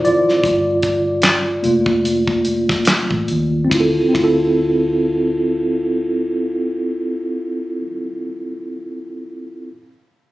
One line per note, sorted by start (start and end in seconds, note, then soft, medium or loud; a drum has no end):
0.00 0.45 F3 medium
0.00 0.45 C4 soft
0.00 0.45 E4 medium
0.00 0.07 F4 medium
0.00 0.45 C5 medium
0.00 0.05 D5 loud
0.05 0.39 G#1 medium
0.05 1.63 F4 medium
0.05 2.82 D5 medium
0.05 closed hi-hat medium
0.29 snare soft
0.44 1.59 G1 medium
0.44 kick loud
0.44 closed hi-hat medium
0.83 kick medium
0.83 closed hi-hat medium
1.22 snare medium
1.22 clap medium
1.22 closed hi-hat medium
1.63 3.08 F1 medium
1.63 3.68 A3 soft
1.63 3.68 A#3 soft
1.63 3.68 F4 medium
1.63 closed hi-hat medium
1.86 kick medium
2.05 closed hi-hat medium
2.27 kick medium
2.45 closed hi-hat medium
2.69 kick medium
2.69 snare soft
2.85 snare medium
2.85 clap medium
2.85 closed hi-hat medium
3.11 3.26 A1 medium
3.11 kick medium
3.28 3.67 D#2 medium
3.28 closed hi-hat medium
3.65 3.95 C4 medium
3.70 3.99 D2 medium
3.70 3.98 E4 medium
3.70 kick medium
3.70 ride medium
3.75 4.00 F4 medium
3.80 4.03 A4 medium
4.09 7.78 C4 medium
4.14 7.85 D2 medium
4.14 7.83 E4 medium
4.14 kick medium
4.14 ride medium
4.19 7.87 F4 medium
4.24 7.93 A4 medium